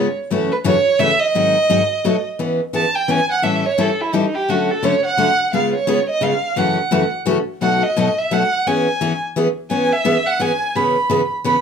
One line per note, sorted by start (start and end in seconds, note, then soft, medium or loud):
0.00 0.12 C#5 medium
0.30 0.51 F#2 medium
0.30 0.51 C#3 medium
0.30 0.51 E3 medium
0.30 0.51 A3 medium
0.30 0.51 C#4 medium
0.30 0.52 F#4 medium
0.52 0.58 B4 medium
0.64 0.75 F#2 loud
0.64 0.76 C#3 medium
0.64 0.76 E3 medium
0.64 0.76 A3 medium
0.64 0.76 C#4 medium
0.64 0.76 F#4 loud
0.64 1.01 C#5 loud
0.99 1.10 F#2 medium
0.99 1.10 C#3 medium
0.99 1.11 E3 medium
0.99 1.11 A3 medium
0.99 1.11 C#4 medium
0.99 1.11 F#4 medium
0.99 1.21 E5 loud
1.19 2.24 D#5 loud
1.35 1.55 G#2 medium
1.35 1.55 D#3 medium
1.35 1.55 F#3 medium
1.35 1.55 C4 medium
1.35 1.56 D#4 medium
1.35 1.56 G#4 medium
1.70 1.80 G#2 medium
1.70 1.80 D#3 medium
1.70 1.80 F#3 medium
1.70 1.81 C4 medium
1.70 1.81 D#4 medium
1.70 1.81 G#4 medium
2.04 2.15 B2 medium
2.04 2.15 F#3 medium
2.04 2.15 A3 medium
2.04 2.16 D#4 medium
2.04 2.16 F#4 medium
2.39 2.59 E3 medium
2.39 2.60 B3 medium
2.39 2.60 C#4 medium
2.39 2.60 G#4 medium
2.73 2.84 E3 medium
2.73 2.85 B3 medium
2.73 2.85 C#4 medium
2.73 2.85 G#4 medium
2.73 2.97 A5 medium
2.95 3.13 G5 medium
3.08 3.19 E3 medium
3.08 3.19 B3 medium
3.08 3.20 C#4 medium
3.08 3.20 G#4 medium
3.08 3.31 G#5 loud
3.31 3.45 F#5 medium
3.42 3.63 A2 medium
3.42 3.64 E3 medium
3.42 3.64 G3 medium
3.42 3.64 C#4 medium
3.42 3.64 E4 medium
3.42 3.64 A4 medium
3.42 3.67 E5 medium
3.66 3.82 C#5 medium
3.78 3.89 A2 medium
3.78 3.89 E3 medium
3.78 3.89 G3 medium
3.78 3.89 C#4 medium
3.78 3.89 E4 medium
3.78 3.89 A4 medium
3.78 4.03 A4 medium
4.01 4.16 E4 medium
4.13 4.24 A2 medium
4.13 4.24 E3 medium
4.13 4.24 G3 medium
4.13 4.24 C#4 medium
4.13 4.36 D#4 medium
4.13 4.24 E4 medium
4.13 4.25 A4 medium
4.35 4.52 G4 medium
4.49 4.69 D3 medium
4.49 4.69 F#3 medium
4.49 4.69 A3 medium
4.49 4.69 C#4 medium
4.49 4.72 F#4 medium
4.49 4.70 F#4 medium
4.71 4.87 A4 medium
4.83 4.94 D3 medium
4.83 4.94 F#3 medium
4.83 4.94 A3 medium
4.83 4.94 C#4 loud
4.83 4.94 F#4 medium
4.83 5.05 C#5 medium
5.05 5.50 F#5 loud
5.17 5.29 D3 medium
5.17 5.29 F#3 medium
5.17 5.29 A3 medium
5.17 5.29 C#4 medium
5.17 5.29 F#4 medium
5.53 5.74 C#3 medium
5.53 5.73 G#3 medium
5.53 5.74 B3 medium
5.53 5.74 F4 medium
5.53 5.74 G#4 medium
5.53 5.73 F5 medium
5.75 6.07 C#5 medium
5.87 5.98 C#3 medium
5.87 5.98 G#3 medium
5.87 5.99 B3 medium
5.87 5.99 F4 medium
5.87 5.99 G#4 loud
6.10 6.25 D#5 medium
6.21 6.33 C#3 medium
6.21 6.33 G#3 medium
6.21 6.33 B3 medium
6.21 6.33 F4 medium
6.21 6.33 G#4 medium
6.21 6.60 F5 medium
6.56 6.77 F#2 medium
6.56 6.77 C#3 medium
6.56 6.78 E3 medium
6.56 6.78 A3 medium
6.56 6.78 C#4 medium
6.56 6.78 F#4 medium
6.56 7.14 F#5 medium
6.91 7.02 F#2 medium
6.91 7.03 C#3 medium
6.91 7.03 E3 loud
6.91 7.03 A3 medium
6.91 7.03 C#4 medium
6.91 7.03 F#4 medium
7.25 7.37 F#2 medium
7.25 7.37 C#3 medium
7.25 7.38 E3 medium
7.25 7.38 A3 medium
7.25 7.38 C#4 medium
7.25 7.38 F#4 medium
7.61 7.82 B2 medium
7.61 7.82 F#3 medium
7.61 7.82 A3 medium
7.61 7.83 D#4 medium
7.61 7.83 F#4 medium
7.61 7.85 F#5 medium
7.83 8.20 D#5 medium
7.97 8.07 B2 medium
7.97 8.08 F#3 medium
7.97 8.08 A3 loud
7.97 8.08 D#4 medium
7.97 8.08 F#4 loud
8.19 8.34 E5 medium
8.31 8.42 B2 medium
8.31 8.42 F#3 medium
8.31 8.43 A3 medium
8.31 8.42 D#4 medium
8.31 8.43 F#4 medium
8.31 8.69 F#5 medium
8.67 8.87 E3 medium
8.67 8.87 B3 medium
8.67 8.87 C#4 medium
8.67 8.87 G#4 medium
8.67 9.22 G#5 medium
9.01 9.12 E3 medium
9.01 9.12 B3 medium
9.01 9.12 C#4 medium
9.01 9.12 G#4 medium
9.36 9.47 E3 medium
9.36 9.47 B3 medium
9.36 9.47 C#4 medium
9.36 9.47 G#4 loud
9.70 9.91 E3 medium
9.70 9.91 B3 medium
9.70 9.91 C#4 medium
9.70 9.91 G#4 medium
9.70 9.94 G#5 medium
9.92 10.28 E5 medium
10.05 10.16 E3 medium
10.05 10.16 B3 medium
10.05 10.16 C#4 medium
10.05 10.16 G#4 loud
10.27 10.43 F#5 medium
10.39 10.51 E3 medium
10.39 10.51 B3 medium
10.39 10.51 C#4 medium
10.39 10.51 G#4 medium
10.39 10.77 G#5 medium
10.75 10.96 C#3 medium
10.75 10.96 E3 medium
10.75 10.96 B3 medium
10.75 10.96 C#4 medium
10.75 10.96 G#4 medium
10.75 11.31 B5 medium
11.10 11.20 C#3 medium
11.10 11.20 E3 medium
11.10 11.21 B3 medium
11.10 11.21 C#4 medium
11.10 11.21 G#4 loud
11.44 11.55 C#3 medium
11.44 11.56 E3 medium
11.44 11.56 B3 medium
11.44 11.56 C#4 medium
11.44 11.56 G#4 medium
11.44 11.61 B5 medium